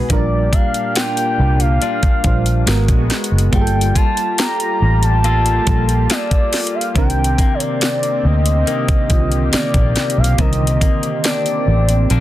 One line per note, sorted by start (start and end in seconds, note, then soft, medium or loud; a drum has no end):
0.00 0.10 B2 medium
0.00 0.12 G#3 loud
0.00 0.11 D#4 medium
0.00 0.12 F#4 medium
0.00 0.11 B4 loud
0.09 0.48 A#1 medium
0.09 2.76 A#2 medium
0.09 1.15 G3 loud
0.09 2.65 A#3 medium
0.09 2.65 D4 medium
0.09 1.16 D4 loud
0.09 1.16 F4 medium
0.09 2.65 G4 medium
0.09 1.17 A#4 loud
0.09 0.55 D5 medium
0.09 kick loud
0.09 closed hi-hat medium
0.53 1.81 D4 medium
0.53 0.97 F5 loud
0.53 kick medium
0.53 closed hi-hat medium
0.74 closed hi-hat medium
0.95 1.82 F4 medium
0.95 1.61 G5 loud
0.95 snare loud
0.95 closed hi-hat medium
1.17 closed hi-hat soft
1.39 1.77 C2 medium
1.60 3.10 F5 loud
1.60 closed hi-hat medium
1.82 2.67 G3 medium
1.82 2.76 D4 medium
1.82 2.76 F4 medium
1.82 closed hi-hat medium
2.03 muted fingered electric bass stroke soft
2.03 kick medium
2.03 closed hi-hat soft
2.24 2.63 A#1 medium
2.24 2.67 G3 medium
2.24 2.67 D4 medium
2.24 2.68 F4 medium
2.24 2.68 C5 medium
2.24 kick medium
2.24 closed hi-hat medium
2.46 closed hi-hat soft
2.66 2.86 G#1 loud
2.66 3.35 G#3 medium
2.66 3.52 G#3 medium
2.66 3.53 G#3 medium
2.66 3.36 B3 medium
2.66 3.52 B3 medium
2.66 3.52 F#4 medium
2.66 3.36 F#4 medium
2.66 3.37 A#4 loud
2.66 snare loud
2.66 closed hi-hat medium
2.88 3.08 A#1 medium
2.88 kick medium
2.88 closed hi-hat medium
3.10 snare medium
3.10 closed hi-hat medium
3.24 closed hi-hat medium
3.31 3.51 F#1 medium
3.38 closed hi-hat medium
3.52 3.91 G1 loud
3.52 4.58 G3 loud
3.52 6.92 G3 medium
3.52 7.03 G3 medium
3.52 4.59 A#3 loud
3.52 6.92 F4 medium
3.52 4.59 F4 medium
3.52 6.92 G4 medium
3.52 3.60 G#4 medium
3.52 3.97 G5 loud
3.52 kick loud
3.52 closed hi-hat medium
3.61 4.63 A4 loud
3.67 closed hi-hat medium
3.81 closed hi-hat medium
3.95 5.24 F4 medium
3.95 4.38 A5 loud
3.95 kick medium
3.95 closed hi-hat medium
4.17 closed hi-hat medium
4.38 4.59 G4 medium
4.38 5.05 A#5 loud
4.38 snare loud
4.38 closed hi-hat medium
4.60 closed hi-hat soft
4.82 5.58 A1 loud
5.03 6.10 A5 loud
5.03 closed hi-hat medium
5.24 6.10 A#3 medium
5.24 6.10 F4 medium
5.24 6.10 A4 medium
5.24 closed hi-hat medium
5.46 closed hi-hat soft
5.66 6.05 A#1 medium
5.66 6.46 G3 medium
5.66 6.46 A#3 medium
5.66 6.47 F4 medium
5.66 6.48 A4 medium
5.66 kick loud
5.66 closed hi-hat medium
5.89 closed hi-hat soft
6.10 7.38 A#3 medium
6.10 7.05 F4 medium
6.10 7.05 A4 medium
6.10 6.76 D5 loud
6.10 snare loud
6.10 closed hi-hat medium
6.31 kick medium
6.31 closed hi-hat medium
6.53 snare medium
6.53 closed hi-hat medium
6.53 open hi-hat medium
6.67 closed hi-hat medium
6.75 6.96 F5 loud
6.81 closed hi-hat medium
6.95 7.34 C2 loud
6.95 10.38 C3 medium
6.95 12.20 C3 medium
6.95 8.01 D#3 loud
6.95 12.20 A#3 medium
6.95 10.35 C4 medium
6.95 8.02 C4 loud
6.95 8.02 D4 loud
6.95 12.20 G4 loud
6.95 8.03 A#4 loud
6.95 7.55 G5 loud
6.95 kick loud
6.95 closed hi-hat medium
7.10 closed hi-hat medium
7.24 closed hi-hat medium
7.38 8.67 A#3 medium
7.38 kick medium
7.38 closed hi-hat medium
7.54 7.62 C#5 medium
7.60 8.27 D5 loud
7.60 closed hi-hat medium
7.81 snare loud
7.81 closed hi-hat medium
8.03 closed hi-hat soft
8.25 8.63 D2 loud
8.25 9.56 D#5 loud
8.46 closed hi-hat medium
8.67 9.52 D#3 medium
8.67 9.53 A#3 medium
8.67 closed hi-hat medium
8.88 muted fingered electric bass stroke soft
8.88 kick loud
8.88 closed hi-hat soft
9.09 9.48 C2 medium
9.09 9.90 D3 medium
9.09 9.89 D#3 medium
9.09 9.89 C4 medium
9.09 9.90 F4 medium
9.09 kick medium
9.09 closed hi-hat medium
9.32 closed hi-hat soft
9.53 12.09 D#3 medium
9.53 10.81 A#3 medium
9.53 10.18 D5 medium
9.53 muted fingered electric bass stroke soft
9.53 snare loud
9.53 closed hi-hat medium
9.74 9.94 A#1 medium
9.74 kick medium
9.74 closed hi-hat medium
9.96 snare medium
9.96 closed hi-hat medium
10.10 closed hi-hat medium
10.18 10.37 B1 medium
10.18 10.41 F5 loud
10.24 closed hi-hat medium
10.38 10.77 C2 loud
10.38 12.20 C3 medium
10.38 11.45 D3 medium
10.38 11.44 D#3 loud
10.38 12.20 C4 medium
10.38 11.44 C4 medium
10.38 11.46 A#4 loud
10.38 11.25 D#5 medium
10.38 kick loud
10.38 closed hi-hat medium
10.53 closed hi-hat medium
10.67 closed hi-hat medium
10.81 12.11 A#3 medium
10.81 kick medium
10.81 closed hi-hat medium
11.03 closed hi-hat medium
11.24 12.11 D4 medium
11.24 12.20 D5 medium
11.24 snare loud
11.24 closed hi-hat medium
11.46 closed hi-hat soft
11.68 12.06 A1 loud
11.89 closed hi-hat medium
12.10 12.20 A#1 loud
12.10 12.20 D#3 medium
12.10 12.20 A#3 medium
12.10 12.20 D4 medium
12.10 closed hi-hat medium